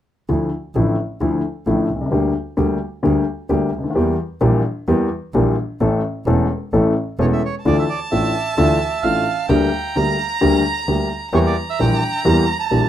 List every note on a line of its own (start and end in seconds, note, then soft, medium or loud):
0.29 0.49 D2 soft
0.29 0.48 D3 soft
0.29 0.48 F3 soft
0.29 0.49 A3 soft
0.29 0.49 E4 soft
0.75 0.95 A1 medium
0.75 0.95 A1 soft
0.75 0.95 A2 soft
0.75 0.95 D3 soft
0.75 0.95 F3 soft
0.75 0.95 A3 soft
0.75 0.95 E4 soft
1.20 1.41 D2 soft
1.20 1.41 D2 medium
1.20 1.41 D3 soft
1.20 1.41 F3 soft
1.20 1.41 A3 soft
1.20 1.41 E4 soft
1.66 1.86 A1 soft
1.66 1.86 A1 medium
1.66 1.86 A2 soft
1.66 1.86 D3 soft
1.66 1.86 F3 soft
1.66 1.86 A3 soft
1.66 1.86 E4 soft
1.90 2.11 C2 soft
1.95 2.01 B1 soft
2.01 2.07 C2 soft
2.06 2.13 C#2 soft
2.11 2.32 D2 soft
2.11 2.32 D3 soft
2.11 2.31 G3 soft
2.11 2.32 A#3 soft
2.11 2.32 G4 soft
2.57 2.77 D2 medium
2.57 2.78 D2 medium
2.57 2.77 D3 soft
2.57 2.77 G3 soft
2.57 2.77 A#3 soft
2.57 2.77 G4 soft
3.03 3.23 D2 medium
3.03 3.24 D2 medium
3.03 3.23 D3 medium
3.03 3.23 G3 soft
3.03 3.23 A#3 soft
3.03 3.23 G4 soft
3.49 3.69 D2 soft
3.49 3.69 D2 medium
3.49 3.69 D3 soft
3.49 3.69 G3 soft
3.49 3.69 A#3 soft
3.49 3.69 G4 soft
3.73 3.95 D2 soft
3.79 3.85 C#2 soft
3.84 3.90 D2 soft
3.90 3.96 D#2 soft
3.95 4.15 E2 soft
3.95 4.15 E2 medium
3.95 4.15 E3 soft
3.95 4.15 G3 soft
3.95 4.15 A#3 soft
3.95 4.15 G4 soft
4.41 4.61 A#1 medium
4.41 4.61 A#2 medium
4.41 4.61 E3 soft
4.41 4.61 G3 soft
4.41 4.61 A#3 soft
4.41 4.61 G4 medium
4.88 5.07 E2 medium
4.88 5.08 E2 medium
4.88 5.07 E3 medium
4.88 5.07 G3 soft
4.88 5.07 A#3 soft
4.88 5.08 G4 medium
5.34 5.54 A#1 medium
5.34 5.54 A#1 soft
5.34 5.54 A#2 medium
5.34 5.54 E3 soft
5.34 5.54 G3 soft
5.34 5.54 A#3 soft
5.34 5.54 G4 soft
5.80 6.00 A1 medium
5.80 6.00 A2 medium
5.80 6.00 E3 soft
5.80 6.00 A3 soft
5.80 6.00 C#4 soft
5.80 6.00 A4 medium
6.26 6.46 E1 medium
6.26 6.46 E2 medium
6.26 6.46 E3 soft
6.26 6.46 A3 soft
6.26 6.46 C#4 soft
6.26 6.46 A4 medium
6.73 6.92 A1 medium
6.73 6.92 A2 medium
6.73 6.92 E3 soft
6.73 6.92 A3 soft
6.73 6.92 C#4 soft
6.73 6.92 A4 medium
7.19 7.39 E1 medium
7.19 7.39 E2 medium
7.19 7.39 E3 soft
7.19 7.39 A3 soft
7.19 7.39 C#4 soft
7.19 7.39 A4 medium
7.19 7.26 C#5 medium
7.33 7.43 E5 soft
7.46 7.55 C#5 medium
7.65 7.85 D2 medium
7.65 7.85 D2 soft
7.65 7.85 D3 medium
7.65 7.85 E3 soft
7.65 7.85 A3 soft
7.65 7.85 D4 soft
7.65 7.85 F4 medium
7.65 7.77 D5 medium
7.65 9.51 A5 medium
7.79 7.84 E5 medium
7.89 8.00 D5 medium
8.11 8.31 A1 soft
8.11 8.32 A1 soft
8.11 8.31 A2 soft
8.11 8.31 E3 soft
8.11 8.31 A3 soft
8.11 8.31 D4 soft
8.11 8.31 F4 soft
8.11 8.54 E5 medium
8.57 8.77 D2 medium
8.57 8.77 D3 medium
8.57 8.77 E3 soft
8.57 8.77 A3 soft
8.57 8.77 D4 soft
8.57 8.77 F4 medium
8.57 9.05 E5 medium
9.03 9.23 A1 soft
9.03 9.23 A2 soft
9.03 9.23 E3 soft
9.03 9.23 A3 soft
9.03 9.23 D4 soft
9.03 9.23 F4 soft
9.03 9.46 F5 medium
9.48 9.69 D2 medium
9.48 9.69 D3 medium
9.48 9.69 G3 soft
9.48 9.69 A#3 soft
9.48 9.69 G4 medium
9.48 9.97 G5 medium
9.48 11.32 A#5 medium
9.96 10.15 D2 soft
9.96 10.16 D2 soft
9.96 10.16 D3 soft
9.96 10.15 G3 soft
9.96 10.15 A#3 soft
9.96 10.16 G4 soft
9.96 10.84 A#5 medium
10.41 10.61 D2 medium
10.41 10.62 D2 medium
10.41 10.61 D3 medium
10.41 10.61 G3 medium
10.41 10.61 A#3 soft
10.41 10.61 G4 medium
10.88 11.07 D2 soft
10.88 11.07 D3 soft
10.88 11.07 G3 soft
10.88 11.07 A#3 soft
10.88 11.07 G4 soft
11.33 11.52 E2 medium
11.33 11.52 E3 medium
11.33 11.52 G3 soft
11.33 11.52 A#3 soft
11.33 11.52 G4 medium
11.33 11.39 C#5 medium
11.33 12.89 A#5 medium
11.46 11.56 D5 medium
11.70 11.79 E5 medium
11.79 11.99 A#1 soft
11.79 11.99 A#2 soft
11.79 11.98 E3 soft
11.79 11.99 G3 soft
11.79 11.99 A#3 soft
11.79 11.99 G4 soft
11.79 12.22 G5 medium
12.25 12.44 E2 medium
12.25 12.44 E3 medium
12.25 12.44 G3 soft
12.25 12.44 A#3 soft
12.25 12.44 G4 medium
12.25 12.57 A#5 medium
12.60 12.89 A5 medium
12.71 12.89 A#1 soft
12.71 12.89 A#2 soft
12.71 12.89 E3 soft
12.71 12.89 G3 soft
12.71 12.89 A#3 soft
12.71 12.89 G4 soft